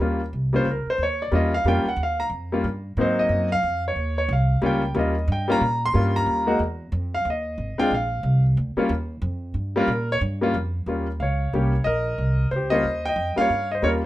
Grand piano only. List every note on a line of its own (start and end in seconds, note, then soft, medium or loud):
0.00 0.19 G3 medium
0.00 0.19 A#3 medium
0.00 0.20 C#4 medium
0.00 0.20 F4 medium
0.53 0.65 G3 medium
0.53 0.65 A#3 medium
0.53 0.66 C#4 medium
0.53 0.66 F4 medium
0.53 0.67 C5 medium
0.71 0.89 A#4 medium
0.90 1.01 C5 medium
1.03 1.21 C#5 medium
1.22 1.34 D5 medium
1.32 1.51 G3 medium
1.32 1.51 A#3 medium
1.32 1.51 C#4 medium
1.32 1.52 F4 medium
1.32 1.54 D#5 medium
1.54 1.66 F5 loud
1.66 1.84 G3 medium
1.66 1.85 A#3 medium
1.66 1.85 C#4 medium
1.66 1.85 F4 medium
1.66 1.87 G5 medium
1.89 2.00 F#5 medium
2.03 2.21 F5 medium
2.20 2.27 A#5 loud
2.52 2.64 G3 medium
2.52 2.64 A#3 medium
2.52 2.64 C#4 medium
2.52 2.64 F4 medium
2.98 3.47 F#3 medium
2.98 3.48 A#3 medium
2.98 3.48 C4 medium
2.98 3.48 D#4 medium
2.98 3.20 C5 medium
3.19 3.50 D#5 medium
3.52 3.83 F5 loud
3.88 4.17 C#5 medium
4.18 4.30 C#5 medium
4.33 4.62 F5 medium
4.62 4.81 G3 medium
4.62 4.81 A#3 medium
4.62 4.81 C#4 medium
4.62 4.81 F4 medium
4.66 4.95 G5 medium
4.95 5.14 G3 medium
4.95 5.14 A#3 medium
4.95 5.14 C#4 medium
4.95 5.15 F4 medium
4.99 5.47 D#5 medium
5.32 5.50 G5 medium
5.48 5.60 G3 medium
5.48 5.60 A#3 medium
5.48 5.60 C#4 medium
5.48 5.61 F4 medium
5.48 5.81 A#5 loud
5.86 6.14 C6 loud
5.94 6.43 G3 medium
5.94 6.44 A#3 medium
5.94 6.44 C#4 medium
5.94 6.44 F4 medium
6.16 6.58 A#5 loud
6.46 6.58 G#3 medium
6.46 6.59 A#3 medium
6.46 6.59 D#4 medium
6.46 6.59 F#4 medium
7.14 7.26 F5 loud
7.30 7.78 D#5 medium
7.78 7.90 G#3 medium
7.78 7.90 C4 medium
7.78 7.90 D4 medium
7.78 7.91 F4 medium
7.78 7.91 G5 loud
7.94 8.43 F5 medium
8.77 8.89 G3 medium
8.77 8.89 A#3 medium
8.77 8.89 C#4 medium
8.77 8.90 F4 medium
9.76 9.87 G3 medium
9.76 9.87 A#3 medium
9.76 9.88 C#4 medium
9.76 9.88 F4 medium
9.76 10.09 A#4 medium
10.12 10.19 C#5 loud
10.41 10.53 G3 medium
10.41 10.53 A#3 medium
10.41 10.53 C#4 medium
10.41 10.54 F4 medium
10.87 11.06 G3 medium
10.87 11.06 A#3 soft
10.87 11.06 C#4 medium
10.87 11.06 F4 medium
11.20 11.83 C#5 medium
11.20 11.82 F5 medium
11.53 11.72 G3 medium
11.53 11.72 A#3 medium
11.53 11.72 C#4 medium
11.53 11.72 G4 medium
11.84 12.48 A#4 medium
11.84 12.47 D#5 medium
12.51 12.70 C5 medium
12.56 12.73 G4 medium
12.70 12.82 G3 medium
12.70 12.83 A#3 medium
12.70 12.83 C#4 medium
12.70 12.83 F4 medium
12.70 13.05 D#5 loud
12.74 13.04 C5 medium
13.05 13.37 D#5 medium
13.05 13.39 G5 loud
13.36 13.48 G3 medium
13.36 13.48 A#3 medium
13.36 13.49 C#4 medium
13.36 13.49 F4 medium
13.36 13.68 F5 loud
13.41 13.70 C#5 medium
13.72 13.84 C5 medium
13.72 13.84 D#5 medium
13.82 14.01 G3 medium
13.82 14.01 A#3 medium
13.82 14.01 C#4 medium
13.82 14.02 F4 medium
13.82 13.89 C#5 loud
13.87 13.92 A#4 medium